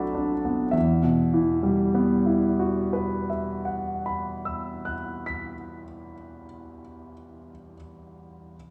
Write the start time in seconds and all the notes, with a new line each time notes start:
Already playing: B1 C4 D4 E4 F#4 A4 B4 D5 E5 F#5 G5 A5 B5
0.15 D4
0.45 B3
0.71 E2 E5
1.03 B2
1.33 E3
1.63 G3
1.94 B3
2.26 E4
2.59 F#4
2.93 B4
3.30 E5
3.65 F#5
4.06 B5
4.45 E6
4.85 F#6
5.26 B6